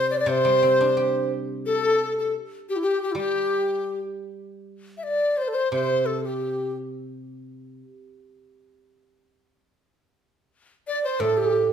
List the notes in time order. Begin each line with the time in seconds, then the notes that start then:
Already playing: C3 C5
0.10 D5
0.17 C5 D5
0.21 D5
0.26 C3 C5
0.31 C5
0.45 G3
0.63 C4
0.81 D4
0.97 G4
1.66 A4
2.19 A4
2.69 G4
2.76 E4
2.82 G4
3.02 G4
3.12 G3 E4
3.16 G4
4.97 E5
5.03 D5
5.08 D5
5.37 C5
5.42 C5
5.48 A4 C5
5.55 C5
5.72 C3 C5
6.06 A4
6.25 G4
10.87 D5
11.04 C5
11.20 A2 A4
11.37 G4